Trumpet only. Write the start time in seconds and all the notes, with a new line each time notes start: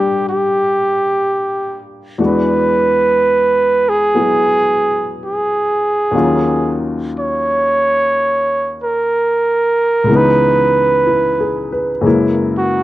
Already playing: G4
0.29 G4
2.26 B4
3.89 G#4
5.25 G#4
7.19 C#5
8.84 A#4
10.17 B4
12.58 F#4